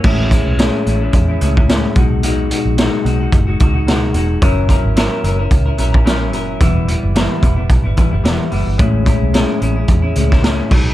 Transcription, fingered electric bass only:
0.04 A1
0.46 B1
0.86 A1
1.13 E2
1.41 C#2
1.96 B1
2.65 A#1
3.05 B1
3.32 F#1
3.61 C#2
4.14 E1
4.42 F#1
4.84 G#1
5.24 F#1
5.51 C#2
5.78 A#1
6.33 F#1
6.61 E1
7.03 F#1
7.43 E1
7.70 B1
7.85 G1
8.13 F#1
8.24 E1
8.52 F#1
8.67 G1
8.79 A1
9.22 B1
9.61 A1
9.88 E2
10.16 C#2
10.71 B1

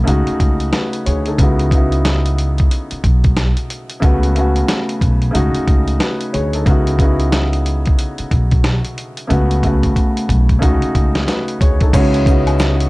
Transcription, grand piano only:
0.04 C#3 A3 D#4 F#4
0.72 F#4 B4
1.06 G#4 C#5
1.27 D#4 A4
1.38 C#3 B3 D#4 E4
1.42 F#4
1.71 C#3 B3 D#4 E4
1.75 F#4
4.00 C#3 A3 B3
4.04 F#4
4.35 C#3 A3 B3 F#4
5.31 C#3 A3 D#4
5.35 F#4
5.99 F#4 B4
6.33 G#4 C#5
6.55 D#4 A4
6.66 C#3 B3 D#4 E4
6.70 F#4
6.99 C#3 B3 D#4 E4
7.03 F#4
9.27 C#3 A3 B3
9.32 F#4
9.63 C#3 A3 B3
9.67 F#4
10.59 C#3 A3 D#4
10.63 F#4
11.27 F#4 B4
11.61 G#4 C#5
11.82 D#4 A4
11.93 C#3 B3 D#4 E4 F#4
12.26 C#3 B3 D#4 E4 F#4

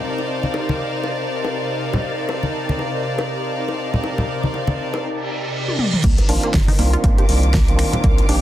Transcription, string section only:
Already playing: D#4 A#4 C5 D5 F5
6.04 D#3
6.58 A#4
7.23 D6
8.05 F5

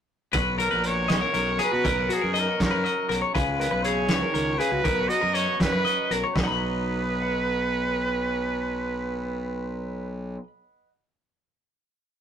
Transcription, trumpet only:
0.60 A#4
0.86 C#5
1.63 B4
2.13 G#4
2.39 A#4
2.64 A#4
3.59 B4
3.83 C#5
4.58 B4
5.09 D#5
5.34 C#5
5.61 B4
6.34 B4

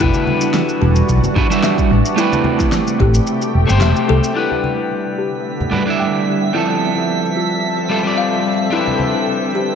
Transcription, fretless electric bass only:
0.00 E1
0.82 E1
1.09 B1
1.91 A1
3.00 A1
3.55 E1
3.70 G1
3.82 E1
4.10 C2

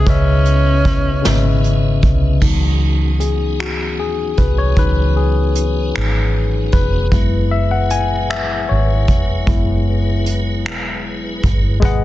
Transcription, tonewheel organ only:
Already playing: B3 C#4 E4
2.40 B3 C#4 D#4 F#4 G#4
7.12 F#3 E4 G#4 B4

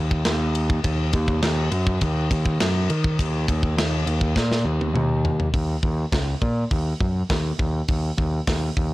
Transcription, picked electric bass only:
Already playing: D#2
0.26 D#2
0.84 D#2
1.13 D#2
1.42 D#2
1.71 F#2
2.02 D#2
2.31 D#2
2.61 F#2
2.90 D#3
3.19 D#2
3.49 D#2
3.77 D#2
4.06 D#2
4.36 A#2
4.65 D#2
4.94 D#2
5.54 D#2
5.83 D#2
6.12 C#2
6.42 A#2
6.71 D#2
7.00 F#2
7.30 D#2
7.59 D#2
7.89 D#2
8.18 D#2
8.47 D#2
8.77 D#2

